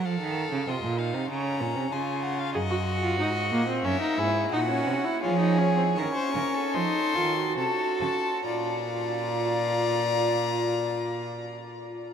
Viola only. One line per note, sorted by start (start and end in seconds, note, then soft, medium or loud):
2.54 2.61 G#4 medium
2.70 2.78 F#4 loud
3.02 3.18 F4 medium
3.19 3.27 D#4 loud
3.52 3.68 A#3 loud
3.68 3.86 C4 loud
3.84 4.01 C#4 loud
4.01 4.20 D#4 loud
4.18 4.52 E4 loud
4.53 4.59 D#4 loud
4.69 5.06 C#4 medium
5.04 5.22 E4 loud
5.22 5.39 F4 medium
5.40 5.60 D#4 medium
5.58 5.76 C#4 medium
5.77 5.85 C4 medium
5.96 6.76 C#4 medium
6.74 7.17 D#4 loud
7.15 7.36 F4 medium
7.37 8.45 F#4 medium
8.46 12.07 F4 medium